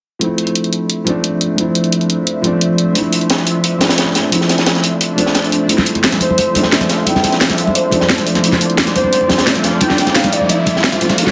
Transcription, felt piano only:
0.19 F3 A3 C4
0.24 E4
1.04 F3 A3 C4
1.09 D4
1.56 F3 A3 C4
1.60 E4
2.42 F3 A3 C4
2.46 D4
2.93 F3 A3 C4
2.98 E4
3.79 F3 A3 C4
3.83 D4
4.30 F3 A3 C4
4.35 E4
5.16 F3 A3 C4
5.21 D4
5.67 F3 A3 C4
5.72 E4
6.53 F3 A3 C4
6.58 D4
7.04 F3 A3 C4
7.09 E4
7.90 F3 A3 C4
7.95 D4
8.42 F3 A3 C4
8.47 E4
9.27 F3 A3 C4
9.32 D4
9.79 F3 A3 C4
9.84 E4
11.00 F3 A3 C4 F4
11.16 F3 A3 A#3
11.21 D4

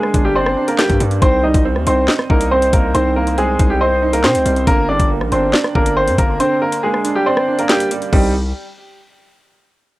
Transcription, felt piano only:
Already playing: D3 A#3 D4 D5
0.14 D4
0.36 D5
0.57 D4
0.79 A#3
1.00 G3
1.22 D#3
1.43 G3
1.65 C4
1.87 D#4
2.08 D#5
2.29 D#4
2.51 C4
2.95 D#3
3.38 C4
3.59 D#4
3.81 D#5
4.02 D#4
4.24 C4
4.45 G3
4.67 D3
4.89 G3
5.10 A#3
5.32 D4
5.53 D5
5.75 D4
5.96 A#3
6.40 D3
6.83 A#3
7.04 D4
7.26 D5
7.48 D4
7.70 A#3
7.91 G3
8.13 D#3 G3 C4 D#4

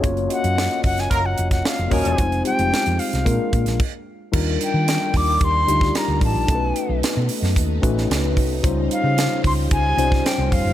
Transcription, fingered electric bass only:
0.04 F#1
0.44 F#2
0.84 F#1
1.11 F#1
1.39 F1
1.79 F1
1.92 D#1
2.05 E1
2.18 F1
2.59 F1
2.73 muted fingered electric bass stroke
2.87 F2
3.13 C2
3.26 A#2
3.53 A#2
3.66 A#1
4.34 D#2
4.74 D#3
5.14 D#2
5.41 D#2
5.68 D2
6.08 D2
6.21 A1
6.35 A#1
6.48 B1
6.89 B1
7.03 muted fingered electric bass stroke
7.17 B2
7.42 F#2
7.57 D#2
7.83 A1
8.10 C#2
8.37 C2
8.64 C#2
9.04 C#3
9.44 C#2
9.71 C#2
9.97 C2
10.38 C2
10.52 F1
10.65 F#1

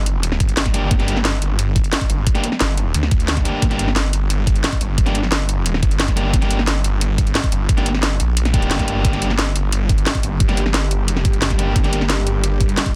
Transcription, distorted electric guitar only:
0.74 A#3 D4 G4
0.99 A#3 D4 G4
2.35 A#3 D4 G4
3.45 A#3 D4 G4
3.70 A#3 D4 G4
5.06 A#3 D4 G4
6.16 A#3 D4 G4
6.42 A#3 D4 G4
7.77 A#3 D4 G4
8.54 A#3 D4 G4
9.13 A#3 D4 G4
10.49 A#3 D4 G4
11.59 A#3 D4 G4
11.84 A#3 D4 G4

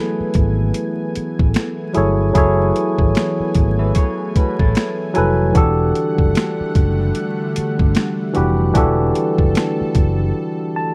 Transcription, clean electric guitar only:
3.79 B4 E5
3.95 G#4 C#5
4.37 F#4 B4
4.60 E4 A4

